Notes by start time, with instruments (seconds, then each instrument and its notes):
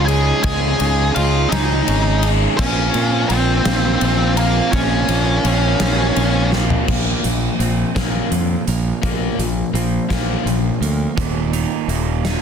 Already playing: fingered electric bass C#2, distorted electric guitar G#3
0.06 distorted electric guitar D#4 G#4, lead electric guitar G#4 G#5, ride
0.10 distorted electric guitar C#4
0.43 fingered electric bass C#2, distorted electric guitar C#3 G#3 C#4 D#4 G#4, lead electric guitar G#4 G#5, kick, ride
0.78 fingered electric bass C#2, distorted electric guitar C#4 D#4 G#4, ride
1.15 fingered electric bass C#2, distorted electric guitar G#3 C#4 D#4 G#4, lead electric guitar F4 F5, ride
1.49 fingered electric bass C#2, lead electric guitar D#4 D#5, distorted electric guitar D#4 G#4, snare, ride
1.54 distorted electric guitar C#4
1.87 fingered electric bass G#1, distorted electric guitar G#3 C#4 D#4 G#4, ride
2.22 distorted electric guitar C#4 D#4 G#4, ride
2.57 fingered electric bass A#1, distorted electric guitar A#2 F3 A#3 C4 F4, lead electric guitar C#4 C#5, kick, crash
2.94 fingered electric bass A#2, distorted electric guitar A#3 C4 F4, ride
3.29 fingered electric bass A#1, distorted electric guitar F3 A#3 C4 F4, lead electric guitar C4 C5, ride
3.65 fingered electric bass A#1, distorted electric guitar A#3 C4 F4, snare, ride
4.01 fingered electric bass A#1, distorted electric guitar F3 A#3 C4 F4, ride
4.37 lead electric guitar A#3 A#4, distorted electric guitar A#3 C4 F4, ride
4.72 fingered electric bass A#1, distorted electric guitar A#2 F3 A#3 C4 F4, lead electric guitar C#4 C#5, kick, ride
5.08 fingered electric bass A#1, distorted electric guitar A#3 C4 F4, ride
5.44 fingered electric bass A#1, distorted electric guitar F3 A#3 C4 F4, ride
5.80 fingered electric bass A#1, distorted electric guitar A#3 C4 F4, snare, ride
6.16 fingered electric bass A#1, distorted electric guitar F3 A#3 C4 F4, ride
6.51 distorted electric guitar A#3 C4 F4, snare
6.70 floor tom
6.88 fingered electric bass A#1, distorted electric guitar A#2 F3 A#3, clean electric guitar A#2, kick, crash
7.23 fingered electric bass A#1, distorted electric guitar A#2 F3, closed hi-hat
7.59 fingered electric bass A#1, distorted electric guitar A#2 F3, clean electric guitar C4, closed hi-hat
7.95 fingered electric bass A#1, distorted electric guitar A#2 F3 A#3, clean electric guitar A#3, kick, snare, closed hi-hat
8.30 fingered electric bass F2, distorted electric guitar A#2 F3, clean electric guitar F3, closed hi-hat
8.68 fingered electric bass A#1, clean electric guitar A#3, closed hi-hat
9.02 fingered electric bass A#1, distorted electric guitar A#2 F3 A#3, clean electric guitar A#2, kick, closed hi-hat
9.39 fingered electric bass A#1, distorted electric guitar A#2 F3, closed hi-hat
9.74 fingered electric bass A#1, distorted electric guitar A#2 F3, clean electric guitar C4, closed hi-hat
10.09 fingered electric bass A#1, distorted electric guitar A#2 F3 A#3, clean electric guitar A#3, kick, snare, closed hi-hat
10.45 fingered electric bass A#1, distorted electric guitar A#2 F3, clean electric guitar F3, closed hi-hat
10.81 fingered electric bass D2, clean electric guitar A#3, closed hi-hat
11.16 fingered electric bass D#1, overdriven electric guitar D#2 A#2 D#3, clean electric guitar D#2, kick, closed hi-hat
11.52 overdriven electric guitar D#2 A#2 D#3, clean electric guitar D#4, closed hi-hat
11.88 fingered electric bass D#1, overdriven electric guitar D#2 A#2 D#3, clean electric guitar A#3, closed hi-hat
12.25 overdriven electric guitar D#2 A#2 D#3, clean electric guitar D#4, snare, closed hi-hat